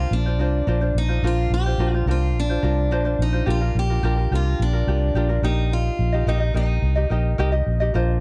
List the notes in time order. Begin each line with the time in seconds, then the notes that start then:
Already playing: D4 F4 A#4 C5
0.11 A#1 D4
0.26 D4 F4 C5
0.39 C2 D4 F4 A#4 C5
0.67 A#1 D4 F4 A#4 C5
0.81 D4 F4 C5
0.95 A#1 D#4
1.08 D4 F4 C5
1.23 A#1 D4 F4 A#4 C5
1.27 F4
1.50 A#1 G4
1.66 D4 F4 C5
1.78 A#1 D4 F4 A#4 C5
1.94 D4 F4 C5
2.06 C2 D4 F4 A#4 C5
2.11 F4
2.34 A#1
2.40 D4
2.50 D4 F4 C5
2.63 C2 D4 F4 A#4 C5
2.91 A#1 D4 F4 A#4 C5
3.05 D4 F4 C5
3.19 A#1 D#4
3.33 D4 F4 C5
3.46 A#1 D4 F4 G4 A#4
3.50 F4
3.61 D4 F4 A#4
3.75 A#1 G4
3.90 D4 F4 A#4
4.03 A#1 D4 F4 G4 A#4
4.17 D4 F4 A#4
4.31 C2 D4 F4 G4 A#4
4.35 F4
4.60 A#1 D4
4.73 D4 F4 A#4
4.87 C2 D4 F4 G4 A#4
5.14 A#1 D4 F4 G4 A#4
5.29 D4 F4 A#4
5.42 A#1 D#4 G4 A#4 D#5
5.73 F4
5.99 A#1
6.12 D#4 G4 D#5
6.26 A#1 D#4 G4 A#4 D#5
6.40 D#4 G4 D#5
6.54 A#1 D#4 G4 A#4 D#5
6.82 C2
6.95 D#4 G4 D#5
7.10 A#1 D#4 G4 A#4 D#5
7.38 C2 D#4 G4 A#4 D#5
7.52 D#4 G4 D#5
7.67 A#1
7.80 D#4 G4 D#5
7.94 A#1 D4 F4 A#4 C5